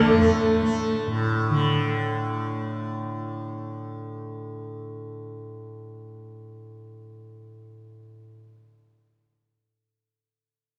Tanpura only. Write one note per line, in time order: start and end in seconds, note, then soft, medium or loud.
0.00 1.07 A2 medium
0.00 1.50 D3 medium
0.00 0.17 A3 medium
0.17 0.62 A3 medium
0.62 6.73 A3 medium
1.07 8.22 A2 medium
1.50 8.65 D3 medium